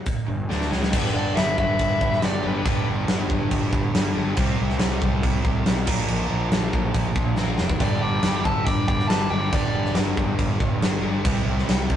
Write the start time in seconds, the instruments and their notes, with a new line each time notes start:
0.06 kick, open hi-hat
0.28 fingered electric bass G1, overdriven electric guitar G2 D3
0.49 fingered electric bass D2, overdriven electric guitar D3 A3 D4, snare
0.61 snare
0.70 fingered electric bass C#2, overdriven electric guitar C#3 G#3 C#4, snare
0.83 snare
0.92 fingered electric bass G1, overdriven electric guitar G2 D3 G3 B3 D4, lead electric guitar G4 B4, kick, crash
1.14 fingered electric bass G1, lead electric guitar A4 D5
1.36 fingered electric bass G1, lead electric guitar B4 E5, snare, crash
1.58 fingered electric bass G1, lead electric guitar B4 E5, kick
1.79 fingered electric bass G1, kick, crash
2.01 fingered electric bass G1, kick
2.13 snare
2.22 fingered electric bass G1, lead electric guitar G4 D5, snare, crash
2.43 fingered electric bass G1, overdriven electric guitar D3 G3 B3 D4, lead electric guitar B4
2.48 overdriven electric guitar G2, lead electric guitar G4
2.65 fingered electric bass G1, overdriven electric guitar G2 D3 G3 B3 D4, kick, crash
2.88 fingered electric bass G1
3.08 fingered electric bass G1, snare, crash
3.30 fingered electric bass G1, kick
3.51 fingered electric bass G1, kick, crash
3.72 fingered electric bass G1, kick
3.94 fingered electric bass G1, snare, crash
4.16 fingered electric bass G1, overdriven electric guitar G2 D3 G3 B3 D4
4.36 fingered electric bass C2, overdriven electric guitar C3 G3 C4, kick, crash
4.40 overdriven electric guitar E4
4.60 fingered electric bass C2
4.70 snare
4.79 fingered electric bass C2, snare, crash
5.02 fingered electric bass C2, kick
5.23 fingered electric bass C2, kick, crash
5.44 fingered electric bass C2, kick
5.66 fingered electric bass B1, snare, crash
5.86 fingered electric bass A#1, overdriven electric guitar A#2 D3 F3 A#3, kick, crash
5.90 overdriven electric guitar D4
6.08 fingered electric bass A#1, crash
6.30 fingered electric bass A#1
6.52 fingered electric bass A#1, snare, crash
6.73 fingered electric bass A#1, kick
6.94 fingered electric bass A#1, kick, crash
7.15 fingered electric bass A#1, kick
7.36 fingered electric bass A#1, overdriven electric guitar A#2 D3 F3 A#3 D4, snare
7.58 fingered electric bass F1, snare
7.69 kick
7.78 fingered electric bass G1, overdriven electric guitar G2 D3 G3 B3 D4, lead electric guitar G4 D5, kick, crash
8.01 fingered electric bass G1, lead electric guitar D5 G5
8.23 fingered electric bass G1, snare, crash
8.45 fingered electric bass G1, lead electric guitar E5 A5, kick
8.65 fingered electric bass G1, lead electric guitar D5 G5, kick, crash
8.88 fingered electric bass G1, lead electric guitar D5 G5, kick
8.99 snare
9.08 fingered electric bass G1, lead electric guitar D5 A5, snare, crash
9.29 fingered electric bass G1, overdriven electric guitar G2 D3 G3 B3 D4, lead electric guitar D5 G5
9.49 overdriven electric guitar G2 D3 G3 B3 D4, crash
9.53 fingered electric bass G1, overdriven electric guitar G3, lead electric guitar G4 D5, kick
9.73 fingered electric bass G1
9.85 snare
9.94 fingered electric bass G1, snare, crash
10.17 fingered electric bass G1, kick
10.39 fingered electric bass G1, kick, crash
10.60 fingered electric bass G1, kick
10.80 fingered electric bass G1, snare, crash
11.01 fingered electric bass G1, overdriven electric guitar G2 D3 G3 B3 D4
11.24 fingered electric bass C2, overdriven electric guitar C3 G3 C4 E4, kick, crash
11.45 fingered electric bass C2
11.58 snare
11.68 fingered electric bass C2, snare, crash
11.90 fingered electric bass C2, kick